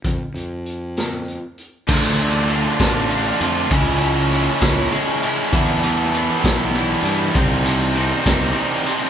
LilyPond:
<<
  \new Staff \with { instrumentName = "Overdriven electric guitar" } { \time 6/8 \key d \phrygian \tempo 4. = 66 r2. | <d a d' f'>8 <a d' f'>8 <d a d' f'>8 <a d' f'>8 <d a d' f'>8 <a d' f'>8 | <cis gis cis' e'>8 <gis cis' e'>8 <cis gis cis' e'>8 <gis cis' e'>8 <cis gis cis' e'>8 <gis cis' e'>8 | <e g b e'>8 <g b e'>8 <e g b e'>8 <g b e'>8 <e g b e'>8 <g b e'>8 |
<c g c' ees'>8 <g c' ees'>8 <c g c' ees'>8 <g c' ees'>8 <c g c' ees'>8 <g c' ees'>8 | }
  \new Staff \with { instrumentName = "Fingered electric bass" } { \clef bass \time 6/8 \key d \phrygian f,16 r16 f,2 r8 | d,4. a,,4 f,8 | cis,4. cis,8 r4 | e,4. b,,4 g,8 |
c,4. c,8 r4 | }
  \new DrumStaff \with { instrumentName = "Drums" } \drummode { \time 6/8 <hh bd>8 hh8 hh8 <hh sn>8 hh8 hh8 | <cymc bd>8 cymr8 cymr8 <bd cymr sn>8 cymr8 cymr8 | <bd cymr>8 cymr8 cymr8 <bd cymr sn>8 cymr8 cymr8 | <bd cymr>8 cymr8 cymr8 <bd cymr sn>8 cymr8 cymr8 |
<bd cymr>8 cymr8 cymr8 <bd cymr sn>8 cymr8 cymr8 | }
>>